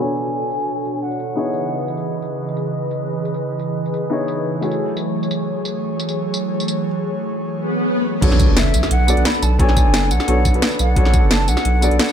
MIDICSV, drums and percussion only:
0, 0, Header, 1, 2, 480
1, 0, Start_track
1, 0, Time_signature, 4, 2, 24, 8
1, 0, Tempo, 342857
1, 16969, End_track
2, 0, Start_track
2, 0, Title_t, "Drums"
2, 233, Note_on_c, 9, 54, 50
2, 373, Note_off_c, 9, 54, 0
2, 712, Note_on_c, 9, 54, 51
2, 838, Note_off_c, 9, 54, 0
2, 838, Note_on_c, 9, 54, 24
2, 978, Note_off_c, 9, 54, 0
2, 1192, Note_on_c, 9, 54, 50
2, 1332, Note_off_c, 9, 54, 0
2, 1559, Note_on_c, 9, 54, 24
2, 1672, Note_off_c, 9, 54, 0
2, 1672, Note_on_c, 9, 54, 50
2, 1812, Note_off_c, 9, 54, 0
2, 2153, Note_on_c, 9, 54, 51
2, 2293, Note_off_c, 9, 54, 0
2, 2633, Note_on_c, 9, 54, 52
2, 2760, Note_off_c, 9, 54, 0
2, 2760, Note_on_c, 9, 54, 25
2, 2900, Note_off_c, 9, 54, 0
2, 3113, Note_on_c, 9, 54, 52
2, 3253, Note_off_c, 9, 54, 0
2, 3480, Note_on_c, 9, 54, 26
2, 3593, Note_off_c, 9, 54, 0
2, 3593, Note_on_c, 9, 54, 50
2, 3733, Note_off_c, 9, 54, 0
2, 4073, Note_on_c, 9, 54, 53
2, 4213, Note_off_c, 9, 54, 0
2, 4553, Note_on_c, 9, 54, 55
2, 4680, Note_off_c, 9, 54, 0
2, 4680, Note_on_c, 9, 54, 26
2, 4820, Note_off_c, 9, 54, 0
2, 5032, Note_on_c, 9, 54, 55
2, 5172, Note_off_c, 9, 54, 0
2, 5400, Note_on_c, 9, 54, 26
2, 5513, Note_off_c, 9, 54, 0
2, 5513, Note_on_c, 9, 54, 52
2, 5653, Note_off_c, 9, 54, 0
2, 5994, Note_on_c, 9, 54, 54
2, 6134, Note_off_c, 9, 54, 0
2, 6474, Note_on_c, 9, 54, 57
2, 6600, Note_off_c, 9, 54, 0
2, 6600, Note_on_c, 9, 54, 26
2, 6740, Note_off_c, 9, 54, 0
2, 6954, Note_on_c, 9, 54, 57
2, 7094, Note_off_c, 9, 54, 0
2, 7321, Note_on_c, 9, 54, 27
2, 7432, Note_off_c, 9, 54, 0
2, 7432, Note_on_c, 9, 54, 55
2, 7572, Note_off_c, 9, 54, 0
2, 7912, Note_on_c, 9, 54, 59
2, 8052, Note_off_c, 9, 54, 0
2, 8394, Note_on_c, 9, 54, 58
2, 8521, Note_off_c, 9, 54, 0
2, 8521, Note_on_c, 9, 54, 27
2, 8661, Note_off_c, 9, 54, 0
2, 8873, Note_on_c, 9, 54, 57
2, 9013, Note_off_c, 9, 54, 0
2, 9241, Note_on_c, 9, 54, 28
2, 9354, Note_off_c, 9, 54, 0
2, 9354, Note_on_c, 9, 54, 57
2, 9494, Note_off_c, 9, 54, 0
2, 11512, Note_on_c, 9, 36, 123
2, 11513, Note_on_c, 9, 42, 96
2, 11513, Note_on_c, 9, 49, 103
2, 11641, Note_on_c, 9, 40, 35
2, 11652, Note_off_c, 9, 36, 0
2, 11653, Note_off_c, 9, 42, 0
2, 11653, Note_off_c, 9, 49, 0
2, 11753, Note_on_c, 9, 36, 105
2, 11753, Note_on_c, 9, 42, 66
2, 11753, Note_on_c, 9, 54, 58
2, 11781, Note_off_c, 9, 40, 0
2, 11893, Note_off_c, 9, 36, 0
2, 11893, Note_off_c, 9, 42, 0
2, 11893, Note_off_c, 9, 54, 0
2, 11993, Note_on_c, 9, 38, 119
2, 11993, Note_on_c, 9, 42, 96
2, 12133, Note_off_c, 9, 38, 0
2, 12133, Note_off_c, 9, 42, 0
2, 12234, Note_on_c, 9, 42, 69
2, 12234, Note_on_c, 9, 54, 59
2, 12362, Note_off_c, 9, 54, 0
2, 12362, Note_on_c, 9, 40, 39
2, 12362, Note_on_c, 9, 54, 28
2, 12374, Note_off_c, 9, 42, 0
2, 12473, Note_on_c, 9, 42, 98
2, 12502, Note_off_c, 9, 40, 0
2, 12502, Note_off_c, 9, 54, 0
2, 12613, Note_off_c, 9, 42, 0
2, 12714, Note_on_c, 9, 42, 67
2, 12714, Note_on_c, 9, 54, 58
2, 12840, Note_off_c, 9, 42, 0
2, 12840, Note_on_c, 9, 42, 39
2, 12854, Note_off_c, 9, 54, 0
2, 12954, Note_off_c, 9, 42, 0
2, 12954, Note_on_c, 9, 38, 117
2, 12954, Note_on_c, 9, 42, 97
2, 13081, Note_on_c, 9, 54, 28
2, 13094, Note_off_c, 9, 38, 0
2, 13094, Note_off_c, 9, 42, 0
2, 13195, Note_off_c, 9, 54, 0
2, 13195, Note_on_c, 9, 42, 68
2, 13195, Note_on_c, 9, 54, 57
2, 13335, Note_off_c, 9, 42, 0
2, 13335, Note_off_c, 9, 54, 0
2, 13433, Note_on_c, 9, 36, 127
2, 13434, Note_on_c, 9, 42, 92
2, 13560, Note_on_c, 9, 40, 34
2, 13573, Note_off_c, 9, 36, 0
2, 13574, Note_off_c, 9, 42, 0
2, 13672, Note_on_c, 9, 42, 66
2, 13672, Note_on_c, 9, 54, 57
2, 13673, Note_on_c, 9, 36, 110
2, 13700, Note_off_c, 9, 40, 0
2, 13812, Note_off_c, 9, 42, 0
2, 13812, Note_off_c, 9, 54, 0
2, 13813, Note_off_c, 9, 36, 0
2, 13913, Note_on_c, 9, 38, 123
2, 13913, Note_on_c, 9, 42, 92
2, 14053, Note_off_c, 9, 38, 0
2, 14053, Note_off_c, 9, 42, 0
2, 14152, Note_on_c, 9, 42, 68
2, 14152, Note_on_c, 9, 54, 56
2, 14279, Note_off_c, 9, 54, 0
2, 14279, Note_on_c, 9, 40, 38
2, 14279, Note_on_c, 9, 54, 27
2, 14292, Note_off_c, 9, 42, 0
2, 14392, Note_on_c, 9, 42, 94
2, 14419, Note_off_c, 9, 40, 0
2, 14419, Note_off_c, 9, 54, 0
2, 14532, Note_off_c, 9, 42, 0
2, 14632, Note_on_c, 9, 42, 66
2, 14632, Note_on_c, 9, 54, 57
2, 14633, Note_on_c, 9, 36, 109
2, 14759, Note_off_c, 9, 42, 0
2, 14759, Note_on_c, 9, 42, 38
2, 14772, Note_off_c, 9, 54, 0
2, 14773, Note_off_c, 9, 36, 0
2, 14872, Note_off_c, 9, 42, 0
2, 14872, Note_on_c, 9, 38, 125
2, 14872, Note_on_c, 9, 42, 95
2, 14998, Note_on_c, 9, 54, 28
2, 15012, Note_off_c, 9, 38, 0
2, 15012, Note_off_c, 9, 42, 0
2, 15110, Note_off_c, 9, 54, 0
2, 15110, Note_on_c, 9, 42, 66
2, 15110, Note_on_c, 9, 54, 57
2, 15250, Note_off_c, 9, 42, 0
2, 15250, Note_off_c, 9, 54, 0
2, 15350, Note_on_c, 9, 42, 91
2, 15352, Note_on_c, 9, 36, 127
2, 15476, Note_on_c, 9, 40, 33
2, 15490, Note_off_c, 9, 42, 0
2, 15492, Note_off_c, 9, 36, 0
2, 15590, Note_on_c, 9, 42, 65
2, 15590, Note_on_c, 9, 54, 57
2, 15592, Note_on_c, 9, 36, 114
2, 15616, Note_off_c, 9, 40, 0
2, 15730, Note_off_c, 9, 42, 0
2, 15730, Note_off_c, 9, 54, 0
2, 15732, Note_off_c, 9, 36, 0
2, 15830, Note_on_c, 9, 38, 120
2, 15830, Note_on_c, 9, 42, 90
2, 15970, Note_off_c, 9, 38, 0
2, 15970, Note_off_c, 9, 42, 0
2, 16071, Note_on_c, 9, 42, 65
2, 16071, Note_on_c, 9, 54, 58
2, 16197, Note_off_c, 9, 54, 0
2, 16197, Note_on_c, 9, 40, 39
2, 16197, Note_on_c, 9, 54, 27
2, 16211, Note_off_c, 9, 42, 0
2, 16311, Note_on_c, 9, 42, 88
2, 16337, Note_off_c, 9, 40, 0
2, 16337, Note_off_c, 9, 54, 0
2, 16451, Note_off_c, 9, 42, 0
2, 16553, Note_on_c, 9, 42, 63
2, 16553, Note_on_c, 9, 54, 57
2, 16679, Note_off_c, 9, 42, 0
2, 16679, Note_on_c, 9, 42, 36
2, 16693, Note_off_c, 9, 54, 0
2, 16793, Note_off_c, 9, 42, 0
2, 16793, Note_on_c, 9, 38, 126
2, 16793, Note_on_c, 9, 42, 92
2, 16919, Note_on_c, 9, 54, 28
2, 16933, Note_off_c, 9, 38, 0
2, 16933, Note_off_c, 9, 42, 0
2, 16969, Note_off_c, 9, 54, 0
2, 16969, End_track
0, 0, End_of_file